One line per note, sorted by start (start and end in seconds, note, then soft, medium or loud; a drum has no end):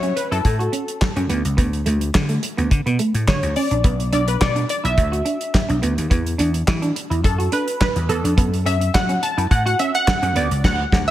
0.00 0.11 F#3 loud
0.00 0.13 C#4 medium
0.00 0.17 C#5 loud
0.00 closed hi-hat soft
0.16 0.30 B4 medium
0.16 muted clean electric guitar stroke soft
0.16 closed hi-hat medium
0.31 0.42 F#2 loud
0.31 0.42 E4 medium
0.31 1.13 A4 medium
0.31 closed hi-hat soft
0.45 0.67 A2 loud
0.45 muted clean electric guitar stroke soft
0.45 kick loud
0.45 closed hi-hat medium
0.59 0.70 F#4 medium
0.59 closed hi-hat soft
0.72 0.84 C#4 medium
0.72 closed hi-hat medium
0.88 closed hi-hat medium
1.01 muted clean electric guitar stroke soft
1.01 kick loud
1.01 snare medium
1.01 clap medium
1.16 1.27 F#2 medium
1.16 1.26 C#4 medium
1.16 closed hi-hat soft
1.29 1.41 D2 loud
1.29 1.41 B3 medium
1.29 closed hi-hat medium
1.45 1.55 C#2 medium
1.45 closed hi-hat medium
1.57 1.80 D2 medium
1.57 1.69 B3 medium
1.57 kick loud
1.57 closed hi-hat medium
1.73 closed hi-hat soft
1.86 2.09 D2 medium
1.86 1.98 A3 medium
1.86 closed hi-hat medium
2.01 muted clean electric guitar stroke soft
2.01 closed hi-hat medium
2.15 2.37 D3 loud
2.15 kick loud
2.15 snare loud
2.15 clap medium
2.29 2.40 A3 medium
2.29 closed hi-hat medium
2.43 muted clean electric guitar stroke soft
2.43 closed hi-hat medium
2.57 2.68 D2 medium
2.57 2.68 B3 medium
2.57 closed hi-hat soft
2.70 2.83 D3 loud
2.70 muted clean electric guitar stroke soft
2.70 kick loud
2.70 closed hi-hat medium
2.86 2.97 B2 medium
2.86 2.96 B3 medium
2.86 closed hi-hat soft
2.99 3.11 A3 medium
2.99 closed hi-hat medium
3.14 3.25 A2 medium
3.14 closed hi-hat medium
3.28 3.40 D3 loud
3.28 3.57 C#5 medium
3.28 muted clean electric guitar stroke soft
3.28 kick loud
3.28 snare loud
3.28 clap medium
3.43 3.53 D2 medium
3.43 closed hi-hat soft
3.56 3.68 C#4 medium
3.56 4.12 D5 medium
3.56 open hi-hat medium
3.71 3.81 A#1 loud
3.71 3.81 D4 medium
3.71 closed hi-hat medium
3.84 4.07 B1 loud
3.84 3.96 B3 medium
3.84 kick loud
3.84 closed hi-hat medium
4.00 closed hi-hat soft
4.12 4.35 B1 medium
4.12 4.24 D4 medium
4.12 4.27 D5 medium
4.12 closed hi-hat medium
4.27 4.42 B4 medium
4.27 muted clean electric guitar stroke soft
4.27 closed hi-hat medium
4.41 4.63 B2 medium
4.41 4.69 D5 loud
4.41 kick loud
4.41 snare loud
4.41 clap medium
4.56 4.66 D4 medium
4.56 closed hi-hat medium
4.69 4.77 D5 loud
4.69 muted clean electric guitar stroke soft
4.69 closed hi-hat medium
4.84 4.95 B1 medium
4.84 4.94 E4 medium
4.84 5.66 E5 loud
4.84 closed hi-hat soft
4.97 5.20 D2 loud
4.97 muted clean electric guitar stroke soft
4.97 kick loud
4.97 closed hi-hat medium
5.12 5.22 F#4 medium
5.12 closed hi-hat soft
5.25 5.37 D4 medium
5.25 closed hi-hat medium
5.41 closed hi-hat medium
5.54 muted clean electric guitar stroke soft
5.54 kick loud
5.54 snare loud
5.54 clap medium
5.69 5.80 B1 medium
5.69 5.79 D4 medium
5.69 closed hi-hat soft
5.82 5.94 D2 medium
5.82 5.94 B3 medium
5.82 closed hi-hat medium
5.98 6.08 D#2 medium
5.98 closed hi-hat medium
6.10 6.33 E2 loud
6.10 6.22 B3 medium
6.10 kick loud
6.10 closed hi-hat medium
6.27 closed hi-hat medium
6.38 6.61 E2 medium
6.38 6.50 D4 medium
6.38 closed hi-hat medium
6.54 muted clean electric guitar stroke soft
6.54 closed hi-hat medium
6.68 6.90 E3 loud
6.68 kick loud
6.68 snare loud
6.68 clap medium
6.82 6.92 D4 medium
6.82 closed hi-hat medium
6.96 muted clean electric guitar stroke soft
6.96 closed hi-hat medium
7.10 7.21 E2 medium
7.10 7.21 E4 medium
7.10 closed hi-hat soft
7.24 7.47 F#2 medium
7.24 7.54 A4 medium
7.24 muted clean electric guitar stroke soft
7.24 kick loud
7.24 closed hi-hat medium
7.38 7.49 F#4 medium
7.38 closed hi-hat soft
7.52 7.64 D4 medium
7.52 7.80 B4 medium
7.52 closed hi-hat medium
7.68 closed hi-hat medium
7.81 8.10 B4 medium
7.81 kick loud
7.81 snare loud
7.81 clap medium
7.96 8.06 E2 medium
7.96 closed hi-hat soft
8.09 8.21 E2 medium
8.09 8.21 B3 medium
8.09 8.67 A4 medium
8.09 closed hi-hat medium
8.24 8.35 F2 medium
8.24 8.34 D4 medium
8.24 closed hi-hat medium
8.37 8.60 F#2 loud
8.37 8.49 B3 medium
8.37 kick loud
8.37 closed hi-hat medium
8.54 closed hi-hat medium
8.66 8.88 F#2 medium
8.66 8.77 C#4 medium
8.66 8.92 E5 loud
8.66 closed hi-hat medium
8.81 muted clean electric guitar stroke soft
8.81 closed hi-hat medium
8.94 9.17 F#3 loud
8.94 9.23 F#5 loud
8.94 kick loud
8.94 snare loud
8.94 clap loud
9.09 9.19 C#4 medium
9.09 closed hi-hat soft
9.23 9.52 A5 loud
9.23 muted clean electric guitar stroke soft
9.23 closed hi-hat medium
9.37 9.48 F#2 medium
9.37 9.48 E4 medium
9.37 closed hi-hat medium
9.51 9.73 A2 loud
9.51 9.65 F#5 loud
9.51 muted clean electric guitar stroke soft
9.51 kick loud
9.51 closed hi-hat medium
9.66 9.76 F#4 medium
9.66 9.80 F#5 loud
9.66 closed hi-hat soft
9.79 9.91 C#4 medium
9.79 9.95 E5 loud
9.79 closed hi-hat medium
9.95 10.33 F#5 loud
9.95 closed hi-hat medium
10.07 muted clean electric guitar stroke soft
10.07 kick loud
10.07 snare loud
10.07 clap medium
10.22 10.33 F#2 medium
10.22 10.32 C#4 medium
10.22 closed hi-hat soft
10.35 10.47 D2 loud
10.35 10.47 B3 medium
10.35 10.65 D5 medium
10.35 closed hi-hat medium
10.51 10.61 C#2 medium
10.51 closed hi-hat medium
10.64 10.84 D2 loud
10.64 11.09 F#5 loud
10.64 kick loud
10.64 snare loud
10.64 crash medium
10.92 11.11 D2 loud
10.92 kick loud
10.92 snare loud